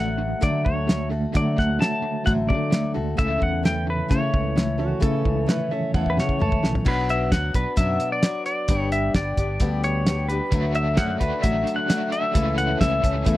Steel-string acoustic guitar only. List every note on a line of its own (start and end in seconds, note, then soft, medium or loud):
0.00 0.40 F#3 medium
0.00 0.41 A3 medium
0.00 0.41 F#4 medium
0.00 0.42 A4 medium
0.41 0.88 D3 medium
0.41 0.86 F#3 medium
0.41 0.89 A3 medium
0.41 0.88 F#4 medium
0.41 0.90 A4 medium
0.88 1.11 F#3 soft
0.88 1.12 A3 medium
0.88 1.11 F#4 medium
0.88 1.10 A4 medium
1.11 1.33 A3 soft
1.11 1.33 F#4 soft
1.11 1.33 A4 soft
1.33 1.80 D3 medium
1.33 1.79 F#3 medium
1.33 1.81 A3 medium
1.33 1.80 F#4 medium
1.33 1.82 A4 medium
1.80 2.24 F#3 medium
1.80 2.26 A3 medium
1.80 2.25 F#4 medium
1.80 2.26 A4 medium
2.25 2.72 D3 medium
2.25 2.71 F#3 medium
2.25 2.72 A3 medium
2.25 2.72 F#4 medium
2.25 2.73 A4 medium
2.72 2.95 F#3 medium
2.72 2.95 A3 medium
2.72 2.94 F#4 medium
2.72 2.93 A4 medium
2.94 3.16 A3 soft
2.94 3.17 F#4 soft
2.94 3.17 A4 soft
3.17 3.63 C#3 medium
3.17 3.62 E3 medium
3.17 3.62 A3 medium
3.17 3.63 C#4 medium
3.17 3.64 A4 medium
3.63 4.08 E3 medium
3.63 4.09 A3 medium
3.63 4.09 C#4 medium
3.63 4.09 A4 medium
4.08 4.55 C#3 medium
4.08 4.54 E3 medium
4.08 4.55 A3 medium
4.08 4.56 C#4 medium
4.08 4.56 A4 medium
4.55 4.79 E3 medium
4.55 4.79 A3 medium
4.55 4.78 C#4 medium
4.55 4.77 A4 medium
4.78 4.99 A3 soft
4.78 5.00 C#4 soft
4.78 5.00 A4 soft
5.00 5.47 C#3 medium
5.00 5.45 E3 medium
5.00 5.46 A3 medium
5.00 5.47 C#4 medium
5.00 5.48 A4 medium
5.46 5.70 E3 medium
5.46 5.71 A3 medium
5.46 5.71 C#4 medium
5.46 5.70 A4 medium
5.71 5.94 A3 soft
5.71 5.94 C#4 soft
5.71 5.94 A4 soft
5.94 6.40 C#3 medium
5.94 6.38 E3 medium
5.94 6.39 A3 medium
5.94 6.40 C#4 medium
5.94 6.40 A4 medium
6.39 6.62 E3 medium
6.39 6.63 A3 medium
6.39 6.63 C#4 medium
6.39 6.61 A4 medium
6.63 6.85 A3 soft
6.63 6.85 C#4 soft
6.63 6.85 A4 medium
6.85 7.31 B2 medium
6.85 7.30 F#3 medium
6.85 7.32 B3 medium
6.85 7.32 D4 medium
6.85 7.31 F#4 medium
7.31 7.54 F#3 medium
7.31 7.55 B3 medium
7.31 7.54 D4 medium
7.31 7.52 F#4 medium
7.54 7.76 B3 soft
7.54 7.76 D4 soft
7.54 7.77 F#4 soft
7.76 8.22 B2 medium
7.76 8.22 F#3 medium
7.76 8.22 B3 medium
7.76 8.24 D4 medium
7.76 8.23 F#4 medium
8.23 8.69 F#3 medium
8.23 8.69 B3 medium
8.23 8.69 D4 medium
8.23 8.70 F#4 medium
8.69 9.15 G2 medium
8.69 9.15 D3 medium
8.69 9.13 G3 medium
8.69 9.13 B3 medium
8.69 9.16 D4 medium
8.69 9.16 G4 medium
9.14 9.37 G3 medium
9.14 9.38 B3 medium
9.14 9.38 D4 medium
9.14 9.37 G4 medium
9.38 9.60 G3 soft
9.38 9.60 B3 soft
9.38 9.60 D4 soft
9.38 9.61 G4 medium
9.60 10.06 G2 medium
9.60 10.06 D3 medium
9.60 10.05 G3 medium
9.60 10.06 B3 medium
9.60 10.06 D4 medium
9.60 10.07 G4 medium
10.06 10.29 G3 medium
10.06 10.30 B3 medium
10.06 10.30 D4 medium
10.06 10.29 G4 medium
10.30 10.52 G3 soft
10.30 10.53 B3 soft
10.30 10.52 D4 soft
10.30 10.52 G4 soft
10.53 10.98 D3 medium
10.53 10.97 F#3 medium
10.53 10.99 A3 medium
10.53 10.98 D4 medium
10.53 10.99 F#4 medium
10.99 11.21 F#3 medium
10.99 11.21 A3 medium
10.99 11.21 D4 medium
10.99 11.19 F#4 medium
11.21 11.42 A3 soft
11.21 11.43 D4 soft
11.21 11.43 F#4 medium
11.43 11.89 D3 medium
11.43 11.87 F#3 medium
11.43 11.88 A3 medium
11.43 11.89 D4 medium
11.43 11.89 F#4 medium
11.89 12.34 F#3 medium
11.89 12.34 A3 medium
11.89 12.35 D4 medium
11.89 12.36 F#4 medium
12.34 12.80 C#3 medium
12.34 12.79 E3 medium
12.34 12.80 A3 medium
12.34 12.80 C#4 medium
12.34 12.81 A4 medium
12.80 13.03 E3 medium
12.80 13.04 A3 medium
12.80 13.03 C#4 medium
12.80 13.02 A4 medium
13.03 13.25 A3 soft
13.03 13.25 C#4 soft
13.03 13.25 A4 medium
13.24 13.37 C#3 medium
13.24 13.37 E3 medium
13.24 13.37 A3 medium
13.24 13.37 C#4 medium
13.24 13.37 A4 medium